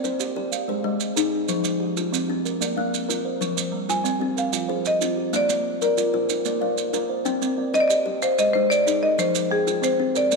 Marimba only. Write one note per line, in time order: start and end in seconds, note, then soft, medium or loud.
3.90 4.39 G#5 loud
4.38 4.87 F5 medium
4.87 5.31 D#5 medium
5.36 5.83 D5 medium
5.85 6.75 D5 medium
7.74 7.81 D#5 loud
7.80 7.88 D5 medium
7.88 8.23 D#5 medium
8.23 8.37 C5 loud
8.39 8.55 D#5 loud
8.53 8.70 C5 medium
8.70 9.03 D5 loud
9.03 9.19 D#5 medium
9.19 9.52 C5 medium
9.51 9.84 G#4 medium
9.84 10.13 C5 medium
10.17 10.36 D5 medium